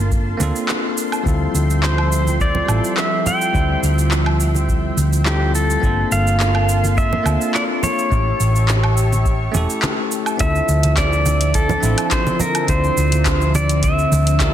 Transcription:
Already playing: G1 A#3 C4 D4 F4 A4 A#4 F5 A5 C6
0.11 kick, cabasa
0.37 D2 A#3 C4 D4, low conga, cabasa
0.41 F4 A4
0.56 cabasa
0.69 clap, cabasa
0.98 cabasa
1.12 cabasa, low woodblock
1.23 D2 F3 G3 C4 E4 F4 E5 G5, kick, cabasa
1.28 A4
1.54 D2, cabasa
1.70 cabasa
1.83 C5, clap, cabasa
1.98 low woodblock
2.12 cabasa
2.27 high conga, cabasa
2.40 D5, kick, cabasa
2.55 low conga
2.66 A1 G3 C4 E4 F4, cabasa, low woodblock
2.71 A4
2.84 cabasa
2.97 E5, clap, cabasa
3.26 G5, low conga, cabasa
3.41 cabasa
3.53 D2 G3 C4 E4 F4 C5, kick, cabasa
3.83 D2, cabasa
3.99 cabasa
4.11 clap, cabasa
4.26 low woodblock
4.40 cabasa
4.55 high conga, cabasa
4.69 kick, cabasa
4.97 D2, cabasa
5.13 cabasa
5.24 G3 C4 E4 F4 G4 A4, clap, cabasa
5.55 A4, cabasa
5.70 cabasa
5.80 G1 A#3 C4 D4 F4 A5 C6, kick, cabasa
5.84 F4 A4
6.11 G1 F5, cabasa
6.27 cabasa
6.40 clap, cabasa
6.55 low woodblock
6.69 cabasa
6.84 high conga, cabasa
6.97 E5, kick, cabasa
7.13 low conga
7.23 D2 A#3 C4 D4 F4, cabasa, low woodblock
7.28 A4
7.41 cabasa
7.54 D5, clap, cabasa
7.83 C#5, low conga, cabasa
7.99 cabasa
8.10 A1 A3 C#4 E4 G4 C#5 E5 C#6, kick, cabasa
8.40 A1, cabasa
8.56 cabasa
8.68 clap, cabasa
8.84 low woodblock
8.97 cabasa
9.12 high conga, cabasa
9.26 kick, cabasa
9.52 E1 A3 C#4 E4 G4, low conga, cabasa
9.57 A4
9.70 cabasa
9.82 clap, high conga, cabasa
10.12 cabasa
10.26 cabasa, low woodblock
10.37 D2 D3 F3 C4 D4 E4 E5, kick, closed hi-hat, high conga, cabasa
10.41 F4 A4
10.55 cabasa
10.68 D2, cabasa
10.83 closed hi-hat, high conga, cabasa
10.97 D5, kick, clap, closed hi-hat, cabasa
11.13 cabasa
11.26 high conga, cabasa
11.41 closed hi-hat, cabasa
11.54 A4, kick, closed hi-hat, cabasa
11.69 low conga, cabasa
11.80 A1 C4 D4 E4 F4, high conga, cabasa
11.85 A4
11.98 closed hi-hat, cabasa, low woodblock
12.11 C5, kick, clap, closed hi-hat, cabasa
12.27 high conga, cabasa
12.40 A#4, low conga, cabasa
12.55 closed hi-hat, cabasa, low woodblock
12.67 D2 C4 D4 E4 F4 C5, kick, closed hi-hat, high conga, cabasa
12.84 cabasa
12.97 D2, cabasa
13.12 closed hi-hat, high conga, cabasa
13.26 kick, clap, closed hi-hat, cabasa
13.41 cabasa
13.55 D5, high conga, cabasa
13.69 closed hi-hat, cabasa
13.83 E5, kick, closed hi-hat, cabasa
13.99 cabasa
14.12 D2, high conga, cabasa
14.27 closed hi-hat, cabasa
14.39 C4 D4 F4 G4 A#4, kick, clap, closed hi-hat, cabasa

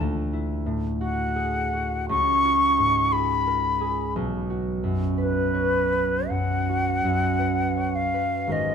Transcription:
0.00 D2
0.33 E4
0.66 A2
1.01 F#4 F#5
1.36 G#4
1.73 F#4
2.09 C#2 C#6
2.44 F4
2.79 G#2
3.12 G#4 B5
3.47 A#4
3.81 G#4
4.16 B1
4.50 F#4
4.84 F#2
5.18 B4
5.54 C#5
5.92 B4
6.29 F#2 F#5
6.69 F#4
7.04 F#2
7.39 B4
7.77 C#5
7.96 F5
8.14 B4
8.47 G#1 F#4 A#4 C5
8.52 D#5 F5

